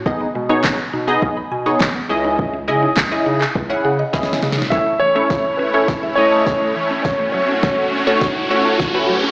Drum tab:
CP |------------x-----------------------x-----------|------------x--------x--------------------------|------------------------------------------------|------------------------------------------------|
SD |------------o-----------------------o-----------|------------o-----------------------o-o-o-o-o-o-|o-----------o-----------o-----------o-----------|o-----------o-----------o-----------o-----------|
BD |o-----------o-----------o-----------o-----------|o-----------o-----------o-----------o-----------|o-----------o-----------o-----------o-----------|o-----------o-----------o-----------o-----------|